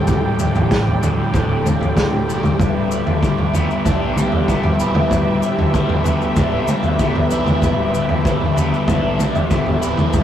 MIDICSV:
0, 0, Header, 1, 5, 480
1, 0, Start_track
1, 0, Tempo, 628272
1, 61, Time_signature, 4, 2, 24, 8
1, 7819, End_track
2, 0, Start_track
2, 0, Title_t, "String section"
2, 0, Program_c, 0, 48
2, 0, Note_on_c, 0, 67, 77
2, 0, Note_on_c, 0, 69, 75
2, 0, Note_on_c, 0, 74, 68
2, 0, Note_on_c, 0, 79, 79
2, 1955, Note_off_c, 0, 69, 0
2, 1956, Note_off_c, 0, 79, 0
2, 1981, Note_on_c, 0, 76, 81
2, 1982, Note_on_c, 0, 71, 68
2, 7819, Note_off_c, 0, 67, 0
2, 7819, Note_off_c, 0, 71, 0
2, 7819, Note_off_c, 0, 74, 0
2, 7819, Note_off_c, 0, 76, 0
2, 7819, End_track
3, 0, Start_track
3, 0, Title_t, "Overdriven electric guitar"
3, 0, Program_c, 1, 29
3, 0, Note_on_c, 1, 45, 69
3, 0, Note_on_c, 1, 50, 71
3, 0, Note_on_c, 1, 55, 70
3, 61, Note_on_c, 1, 38, 70
3, 292, Note_off_c, 1, 45, 0
3, 301, Note_on_c, 1, 45, 70
3, 537, Note_off_c, 1, 38, 0
3, 540, Note_on_c, 1, 38, 61
3, 770, Note_off_c, 1, 45, 0
3, 780, Note_on_c, 1, 45, 73
3, 1021, Note_off_c, 1, 50, 0
3, 1024, Note_on_c, 1, 50, 77
3, 1265, Note_off_c, 1, 38, 0
3, 1268, Note_on_c, 1, 38, 64
3, 1493, Note_off_c, 1, 45, 0
3, 1502, Note_on_c, 1, 45, 62
3, 1525, Note_off_c, 1, 55, 0
3, 1744, Note_on_c, 1, 55, 73
3, 1983, Note_off_c, 1, 38, 0
3, 1984, Note_off_c, 1, 45, 0
3, 1986, Note_on_c, 1, 43, 76
3, 2223, Note_off_c, 1, 50, 0
3, 2223, Note_on_c, 1, 50, 62
3, 2467, Note_off_c, 1, 55, 0
3, 2467, Note_on_c, 1, 55, 58
3, 2707, Note_on_c, 1, 59, 71
3, 2946, Note_on_c, 1, 62, 73
3, 3186, Note_off_c, 1, 43, 0
3, 3187, Note_off_c, 1, 55, 0
3, 3190, Note_on_c, 1, 55, 68
3, 3425, Note_off_c, 1, 59, 0
3, 3428, Note_on_c, 1, 59, 67
3, 3671, Note_on_c, 1, 64, 65
3, 3694, Note_off_c, 1, 50, 0
3, 3913, Note_on_c, 1, 43, 72
3, 4146, Note_on_c, 1, 50, 63
3, 4385, Note_off_c, 1, 55, 0
3, 4388, Note_on_c, 1, 55, 65
3, 4620, Note_off_c, 1, 59, 0
3, 4623, Note_on_c, 1, 59, 65
3, 4862, Note_off_c, 1, 62, 0
3, 4865, Note_on_c, 1, 62, 75
3, 4888, Note_off_c, 1, 64, 0
3, 5106, Note_off_c, 1, 55, 0
3, 5108, Note_off_c, 1, 43, 0
3, 5109, Note_on_c, 1, 55, 58
3, 5343, Note_off_c, 1, 59, 0
3, 5347, Note_on_c, 1, 59, 73
3, 5590, Note_on_c, 1, 64, 72
3, 5613, Note_off_c, 1, 50, 0
3, 5831, Note_on_c, 1, 43, 65
3, 6069, Note_on_c, 1, 50, 70
3, 6306, Note_off_c, 1, 55, 0
3, 6309, Note_on_c, 1, 55, 73
3, 6546, Note_off_c, 1, 59, 0
3, 6549, Note_on_c, 1, 59, 67
3, 6782, Note_off_c, 1, 62, 0
3, 6785, Note_on_c, 1, 62, 78
3, 6808, Note_off_c, 1, 64, 0
3, 7014, Note_off_c, 1, 55, 0
3, 7024, Note_on_c, 1, 55, 61
3, 7026, Note_off_c, 1, 43, 0
3, 7256, Note_off_c, 1, 59, 0
3, 7265, Note_on_c, 1, 59, 75
3, 7497, Note_on_c, 1, 64, 75
3, 7520, Note_off_c, 1, 50, 0
3, 7738, Note_on_c, 1, 43, 73
3, 7819, Note_off_c, 1, 43, 0
3, 7819, Note_off_c, 1, 55, 0
3, 7819, Note_off_c, 1, 59, 0
3, 7819, Note_off_c, 1, 62, 0
3, 7819, Note_off_c, 1, 64, 0
3, 7819, End_track
4, 0, Start_track
4, 0, Title_t, "Fingered electric bass"
4, 0, Program_c, 2, 33
4, 62, Note_on_c, 2, 38, 79
4, 273, Note_off_c, 2, 38, 0
4, 410, Note_on_c, 2, 33, 88
4, 732, Note_off_c, 2, 33, 0
4, 778, Note_on_c, 2, 38, 83
4, 991, Note_off_c, 2, 38, 0
4, 1023, Note_on_c, 2, 26, 89
4, 1235, Note_off_c, 2, 26, 0
4, 1380, Note_on_c, 2, 38, 86
4, 1699, Note_off_c, 2, 38, 0
4, 1738, Note_on_c, 2, 30, 82
4, 1847, Note_off_c, 2, 30, 0
4, 1986, Note_on_c, 2, 26, 86
4, 2302, Note_off_c, 2, 26, 0
4, 2339, Note_on_c, 2, 38, 83
4, 2553, Note_off_c, 2, 38, 0
4, 2700, Note_on_c, 2, 38, 83
4, 2808, Note_off_c, 2, 38, 0
4, 2942, Note_on_c, 2, 35, 90
4, 3260, Note_off_c, 2, 35, 0
4, 3304, Note_on_c, 2, 28, 69
4, 3621, Note_off_c, 2, 28, 0
4, 3661, Note_on_c, 2, 26, 75
4, 3768, Note_off_c, 2, 26, 0
4, 3906, Note_on_c, 2, 38, 85
4, 4117, Note_off_c, 2, 38, 0
4, 4259, Note_on_c, 2, 38, 88
4, 4577, Note_off_c, 2, 38, 0
4, 4627, Note_on_c, 2, 38, 87
4, 4837, Note_off_c, 2, 38, 0
4, 4865, Note_on_c, 2, 26, 86
4, 5075, Note_off_c, 2, 26, 0
4, 5223, Note_on_c, 2, 38, 89
4, 5539, Note_off_c, 2, 38, 0
4, 5579, Note_on_c, 2, 35, 87
4, 5686, Note_off_c, 2, 35, 0
4, 5823, Note_on_c, 2, 26, 96
4, 6139, Note_off_c, 2, 26, 0
4, 6185, Note_on_c, 2, 38, 81
4, 6395, Note_off_c, 2, 38, 0
4, 6547, Note_on_c, 2, 38, 89
4, 6651, Note_off_c, 2, 38, 0
4, 6786, Note_on_c, 2, 35, 90
4, 7100, Note_off_c, 2, 35, 0
4, 7152, Note_on_c, 2, 28, 85
4, 7464, Note_off_c, 2, 28, 0
4, 7509, Note_on_c, 2, 26, 89
4, 7612, Note_off_c, 2, 26, 0
4, 7745, Note_on_c, 2, 38, 86
4, 7819, Note_off_c, 2, 38, 0
4, 7819, End_track
5, 0, Start_track
5, 0, Title_t, "Drums"
5, 55, Note_on_c, 9, 70, 70
5, 57, Note_on_c, 9, 43, 76
5, 60, Note_on_c, 9, 36, 103
5, 131, Note_off_c, 9, 70, 0
5, 134, Note_off_c, 9, 43, 0
5, 136, Note_off_c, 9, 36, 0
5, 300, Note_on_c, 9, 70, 94
5, 303, Note_on_c, 9, 43, 71
5, 376, Note_off_c, 9, 70, 0
5, 379, Note_off_c, 9, 43, 0
5, 422, Note_on_c, 9, 70, 27
5, 425, Note_on_c, 9, 43, 88
5, 499, Note_off_c, 9, 70, 0
5, 501, Note_off_c, 9, 43, 0
5, 543, Note_on_c, 9, 36, 108
5, 544, Note_on_c, 9, 70, 66
5, 549, Note_on_c, 9, 38, 75
5, 619, Note_off_c, 9, 36, 0
5, 620, Note_off_c, 9, 70, 0
5, 625, Note_off_c, 9, 38, 0
5, 665, Note_on_c, 9, 43, 70
5, 742, Note_off_c, 9, 43, 0
5, 785, Note_on_c, 9, 43, 85
5, 788, Note_on_c, 9, 70, 86
5, 861, Note_off_c, 9, 43, 0
5, 864, Note_off_c, 9, 70, 0
5, 1020, Note_on_c, 9, 43, 80
5, 1022, Note_on_c, 9, 36, 110
5, 1029, Note_on_c, 9, 70, 71
5, 1096, Note_off_c, 9, 43, 0
5, 1098, Note_off_c, 9, 36, 0
5, 1106, Note_off_c, 9, 70, 0
5, 1266, Note_on_c, 9, 43, 76
5, 1266, Note_on_c, 9, 47, 75
5, 1272, Note_on_c, 9, 70, 100
5, 1342, Note_off_c, 9, 43, 0
5, 1342, Note_off_c, 9, 47, 0
5, 1348, Note_off_c, 9, 70, 0
5, 1383, Note_on_c, 9, 43, 80
5, 1394, Note_on_c, 9, 70, 25
5, 1459, Note_off_c, 9, 43, 0
5, 1470, Note_off_c, 9, 70, 0
5, 1503, Note_on_c, 9, 36, 106
5, 1508, Note_on_c, 9, 38, 76
5, 1509, Note_on_c, 9, 70, 62
5, 1579, Note_off_c, 9, 36, 0
5, 1584, Note_off_c, 9, 38, 0
5, 1585, Note_off_c, 9, 70, 0
5, 1625, Note_on_c, 9, 47, 69
5, 1701, Note_off_c, 9, 47, 0
5, 1755, Note_on_c, 9, 70, 94
5, 1831, Note_off_c, 9, 70, 0
5, 1859, Note_on_c, 9, 43, 83
5, 1859, Note_on_c, 9, 47, 78
5, 1872, Note_on_c, 9, 70, 27
5, 1936, Note_off_c, 9, 43, 0
5, 1936, Note_off_c, 9, 47, 0
5, 1949, Note_off_c, 9, 70, 0
5, 1982, Note_on_c, 9, 43, 81
5, 1983, Note_on_c, 9, 36, 98
5, 1992, Note_on_c, 9, 70, 79
5, 2058, Note_off_c, 9, 43, 0
5, 2060, Note_off_c, 9, 36, 0
5, 2069, Note_off_c, 9, 70, 0
5, 2227, Note_on_c, 9, 70, 89
5, 2303, Note_off_c, 9, 70, 0
5, 2344, Note_on_c, 9, 43, 83
5, 2420, Note_off_c, 9, 43, 0
5, 2465, Note_on_c, 9, 36, 105
5, 2473, Note_on_c, 9, 70, 62
5, 2541, Note_off_c, 9, 36, 0
5, 2550, Note_off_c, 9, 70, 0
5, 2586, Note_on_c, 9, 43, 69
5, 2662, Note_off_c, 9, 43, 0
5, 2701, Note_on_c, 9, 43, 81
5, 2711, Note_on_c, 9, 70, 94
5, 2777, Note_off_c, 9, 43, 0
5, 2787, Note_off_c, 9, 70, 0
5, 2832, Note_on_c, 9, 70, 25
5, 2908, Note_off_c, 9, 70, 0
5, 2943, Note_on_c, 9, 43, 89
5, 2943, Note_on_c, 9, 47, 75
5, 2945, Note_on_c, 9, 36, 101
5, 2949, Note_on_c, 9, 70, 78
5, 3020, Note_off_c, 9, 43, 0
5, 3020, Note_off_c, 9, 47, 0
5, 3021, Note_off_c, 9, 36, 0
5, 3025, Note_off_c, 9, 70, 0
5, 3182, Note_on_c, 9, 47, 73
5, 3192, Note_on_c, 9, 70, 95
5, 3258, Note_off_c, 9, 47, 0
5, 3269, Note_off_c, 9, 70, 0
5, 3300, Note_on_c, 9, 43, 87
5, 3377, Note_off_c, 9, 43, 0
5, 3425, Note_on_c, 9, 36, 103
5, 3432, Note_on_c, 9, 70, 67
5, 3501, Note_off_c, 9, 36, 0
5, 3508, Note_off_c, 9, 70, 0
5, 3542, Note_on_c, 9, 43, 81
5, 3618, Note_off_c, 9, 43, 0
5, 3665, Note_on_c, 9, 70, 98
5, 3741, Note_off_c, 9, 70, 0
5, 3781, Note_on_c, 9, 43, 88
5, 3781, Note_on_c, 9, 47, 82
5, 3858, Note_off_c, 9, 43, 0
5, 3858, Note_off_c, 9, 47, 0
5, 3901, Note_on_c, 9, 43, 83
5, 3905, Note_on_c, 9, 36, 105
5, 3913, Note_on_c, 9, 70, 84
5, 3977, Note_off_c, 9, 43, 0
5, 3981, Note_off_c, 9, 36, 0
5, 3989, Note_off_c, 9, 70, 0
5, 4145, Note_on_c, 9, 70, 93
5, 4221, Note_off_c, 9, 70, 0
5, 4268, Note_on_c, 9, 43, 85
5, 4345, Note_off_c, 9, 43, 0
5, 4385, Note_on_c, 9, 36, 113
5, 4389, Note_on_c, 9, 70, 64
5, 4461, Note_off_c, 9, 36, 0
5, 4465, Note_off_c, 9, 70, 0
5, 4503, Note_on_c, 9, 43, 79
5, 4579, Note_off_c, 9, 43, 0
5, 4616, Note_on_c, 9, 43, 85
5, 4628, Note_on_c, 9, 70, 86
5, 4693, Note_off_c, 9, 43, 0
5, 4704, Note_off_c, 9, 70, 0
5, 4749, Note_on_c, 9, 70, 26
5, 4825, Note_off_c, 9, 70, 0
5, 4860, Note_on_c, 9, 70, 78
5, 4862, Note_on_c, 9, 43, 84
5, 4862, Note_on_c, 9, 47, 75
5, 4863, Note_on_c, 9, 36, 104
5, 4937, Note_off_c, 9, 70, 0
5, 4938, Note_off_c, 9, 43, 0
5, 4938, Note_off_c, 9, 47, 0
5, 4940, Note_off_c, 9, 36, 0
5, 5101, Note_on_c, 9, 47, 74
5, 5101, Note_on_c, 9, 70, 109
5, 5177, Note_off_c, 9, 47, 0
5, 5177, Note_off_c, 9, 70, 0
5, 5216, Note_on_c, 9, 43, 79
5, 5222, Note_on_c, 9, 70, 29
5, 5293, Note_off_c, 9, 43, 0
5, 5298, Note_off_c, 9, 70, 0
5, 5340, Note_on_c, 9, 70, 73
5, 5343, Note_on_c, 9, 36, 103
5, 5416, Note_off_c, 9, 70, 0
5, 5419, Note_off_c, 9, 36, 0
5, 5465, Note_on_c, 9, 43, 77
5, 5541, Note_off_c, 9, 43, 0
5, 5583, Note_on_c, 9, 70, 101
5, 5659, Note_off_c, 9, 70, 0
5, 5702, Note_on_c, 9, 43, 81
5, 5702, Note_on_c, 9, 47, 74
5, 5709, Note_on_c, 9, 70, 29
5, 5779, Note_off_c, 9, 43, 0
5, 5779, Note_off_c, 9, 47, 0
5, 5785, Note_off_c, 9, 70, 0
5, 5822, Note_on_c, 9, 43, 77
5, 5823, Note_on_c, 9, 36, 98
5, 5831, Note_on_c, 9, 70, 81
5, 5898, Note_off_c, 9, 43, 0
5, 5899, Note_off_c, 9, 36, 0
5, 5908, Note_off_c, 9, 70, 0
5, 6069, Note_on_c, 9, 70, 93
5, 6146, Note_off_c, 9, 70, 0
5, 6181, Note_on_c, 9, 43, 77
5, 6257, Note_off_c, 9, 43, 0
5, 6305, Note_on_c, 9, 36, 114
5, 6315, Note_on_c, 9, 70, 72
5, 6381, Note_off_c, 9, 36, 0
5, 6391, Note_off_c, 9, 70, 0
5, 6426, Note_on_c, 9, 43, 68
5, 6502, Note_off_c, 9, 43, 0
5, 6542, Note_on_c, 9, 43, 77
5, 6553, Note_on_c, 9, 70, 94
5, 6619, Note_off_c, 9, 43, 0
5, 6630, Note_off_c, 9, 70, 0
5, 6676, Note_on_c, 9, 70, 27
5, 6752, Note_off_c, 9, 70, 0
5, 6781, Note_on_c, 9, 43, 83
5, 6781, Note_on_c, 9, 47, 81
5, 6784, Note_on_c, 9, 36, 109
5, 6793, Note_on_c, 9, 70, 73
5, 6858, Note_off_c, 9, 43, 0
5, 6858, Note_off_c, 9, 47, 0
5, 6860, Note_off_c, 9, 36, 0
5, 6870, Note_off_c, 9, 70, 0
5, 7022, Note_on_c, 9, 47, 80
5, 7029, Note_on_c, 9, 70, 103
5, 7098, Note_off_c, 9, 47, 0
5, 7105, Note_off_c, 9, 70, 0
5, 7143, Note_on_c, 9, 43, 86
5, 7146, Note_on_c, 9, 70, 30
5, 7220, Note_off_c, 9, 43, 0
5, 7222, Note_off_c, 9, 70, 0
5, 7264, Note_on_c, 9, 36, 116
5, 7264, Note_on_c, 9, 70, 70
5, 7340, Note_off_c, 9, 36, 0
5, 7340, Note_off_c, 9, 70, 0
5, 7384, Note_on_c, 9, 43, 73
5, 7460, Note_off_c, 9, 43, 0
5, 7506, Note_on_c, 9, 70, 97
5, 7583, Note_off_c, 9, 70, 0
5, 7621, Note_on_c, 9, 43, 84
5, 7621, Note_on_c, 9, 47, 73
5, 7628, Note_on_c, 9, 70, 27
5, 7697, Note_off_c, 9, 43, 0
5, 7697, Note_off_c, 9, 47, 0
5, 7705, Note_off_c, 9, 70, 0
5, 7740, Note_on_c, 9, 70, 74
5, 7744, Note_on_c, 9, 43, 79
5, 7745, Note_on_c, 9, 36, 106
5, 7816, Note_off_c, 9, 70, 0
5, 7819, Note_off_c, 9, 36, 0
5, 7819, Note_off_c, 9, 43, 0
5, 7819, End_track
0, 0, End_of_file